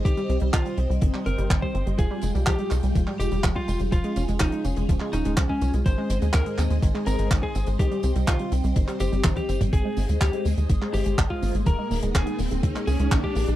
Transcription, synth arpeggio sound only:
\new Staff \with { instrumentName = "Synth arpeggio sound" } { \clef bass \time 4/4 \key aes \major \tempo 4 = 124 ees16 g16 c'16 g16 ees16 g16 c'16 g16 ees16 g16 c'16 g16 ees16 g16 c'16 g16 | f16 g16 aes16 g16 f16 g16 aes16 g16 f16 g16 aes16 g16 f16 g16 aes16 g16 | f16 aes16 des'16 aes16 f16 aes16 des'16 aes16 f16 aes16 des'16 aes16 f16 aes16 des'16 aes16 | ees16 aes16 c'16 aes16 ees16 aes16 c'16 aes16 ees16 aes16 c'16 aes16 ees16 aes16 c'16 aes16 |
ees16 g16 c'16 g16 ees16 g16 c'16 g16 ees16 g16 c'16 g16 ees16 g16 c'16 g16 | ees16 aes16 c'16 aes16 ees16 aes16 c'16 aes16 ees16 aes16 c'16 aes16 ees16 aes16 c'16 aes16 | ees16 aes16 bes16 aes16 ees16 aes16 bes16 aes16 ees16 aes16 bes16 aes16 ees16 aes16 bes16 aes16 | }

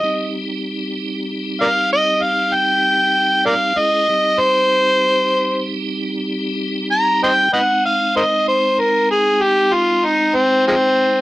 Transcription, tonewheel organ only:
\new Staff \with { instrumentName = "Tonewheel organ" } { \time 12/8 \key c \minor \tempo 4. = 64 <g c' ees' g'>1. | <aes des' e' aes'>8 <g c' ees' g'>1~ <g c' ees' g'>4. | <aes c' ees'>1. | }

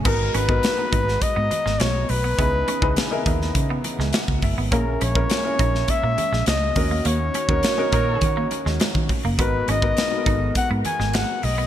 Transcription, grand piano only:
\new Staff \with { instrumentName = "Grand piano" } { \time 4/4 \key gis \minor \tempo 4 = 103 <b dis' fis' ais'>8 r16 <b dis' fis' ais'>8 <b dis' fis' ais''>4. r4 r16 | <dis' e' gis' b'>8 r16 <dis' e' gis' b'>8 <dis' e' gis' ais'>4. r16 fis''8 e''8 | <cis' e' gis' ais'>8 r16 <cis' e' gis' ais'>8 <cis' e' gis' ais'>4. r8. <cis' dis' fis' ais'>8~ | <cis' dis' fis' ais'>8 r16 <cis' dis' fis' ais'>8 <cis' dis' fis' ais'>4. r4 r16 |
<b dis' fis' ais'>8 r16 <b dis' fis' ais'>8 <b dis' fis' a' ais'>4. r4 r16 | }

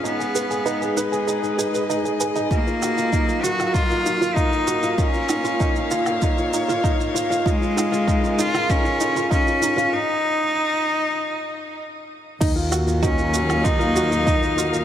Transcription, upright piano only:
\new Staff \with { instrumentName = "Upright piano" } { \time 4/4 \key ees \minor \tempo 4 = 97 ees'16 aes'16 ces''16 aes'16 ees'16 aes'16 ces''16 aes'16 ees'16 aes'16 ees'16 ces''16 ees'16 aes'16 aes''16 ees'16 | ees'16 f'16 ges'16 f'16 ees'16 f'16 ges'16 f'16 ees'16 f'16 ges'16 f'16 ees'16 f'16 ges'16 f'16 | ees'16 f'16 f'16 f'16 ees'16 f'16 f'16 f'16 ees'16 f'16 f'16 f'16 ees'16 f'16 f'16 f'16 | ees'16 f'16 f'16 f'16 ees'16 f'16 f'16 f'16 ees'16 f'16 f'16 f'16 ees'16 f'16 f'16 f'16 |
r1 | ees'16 f'16 ges'16 f'16 ees'16 f'16 ges'16 f'16 ees'16 f'16 ges'16 f'16 ees'16 f'16 ges'16 f'16 | }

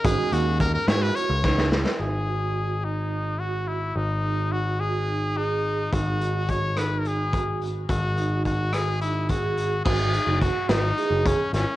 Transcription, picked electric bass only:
\new Staff \with { instrumentName = "Picked electric bass" } { \clef bass \time 7/8 \key fis \mixolydian \tempo 4 = 107 gis,,16 r16 dis,4 gis,8 r16 cis,4~ cis,16 | gis,,2.~ gis,,8 | gis,,2.~ gis,,8 | gis,,2.~ gis,,8 |
gis,,2.~ gis,,8 | gis,,8. fis,,8 r16 gis,,8 r16 fis,,8 r16 gis,,16 r16 | }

